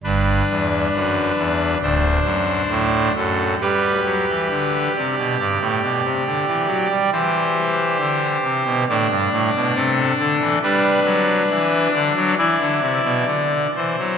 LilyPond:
<<
  \new Staff \with { instrumentName = "Pipe organ" } { \time 4/4 \key g \major \tempo 4 = 68 << { g,,8 r4. d,,8 r4 a'8 | b'4. d''8 d''2 | c''2 d''4 a'8 a'8 | b'4. d''8 d''4. c''8 | } \\ { <d' b'>2 <d' c''>4. r8 | g'1 | g'2 d'2 | d'2 e'4 r4 | } >> }
  \new Staff \with { instrumentName = "Pipe organ" } { \clef bass \time 4/4 \key g \major g,8 e,8 fis,8 e,8 d,8 fis,8 a,8 fis,8 | g8 fis16 e16 d8 c16 b,16 g,16 a,16 b,16 c16 d16 e16 fis16 g16 | e4 d8 c16 b,16 a,16 g,16 a,16 b,16 c8 d16 e16 | g8 fis8 e8 d16 fis16 e16 d16 c16 b,16 d8 e16 fis16 | }
>>